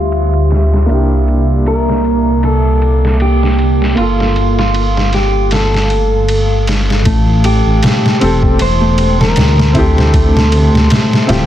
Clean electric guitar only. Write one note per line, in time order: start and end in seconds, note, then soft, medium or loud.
0.00 0.48 F4 medium
1.68 2.44 A#4 loud
2.45 3.21 A4 medium
3.22 3.97 G4 medium
3.98 4.58 F4 medium
4.59 5.14 F4 medium
5.14 5.53 G4 medium
5.53 6.64 A4 medium
7.45 8.61 G4 loud
8.62 9.16 C5 loud
9.21 9.76 A#4 loud
9.76 11.46 A4 medium